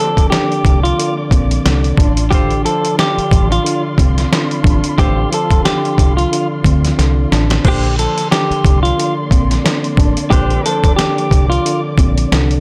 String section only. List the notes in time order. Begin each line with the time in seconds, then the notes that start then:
Already playing: A#3 D5 D6
2.00 F4 C6
7.63 A#3 D5 C6
10.32 D6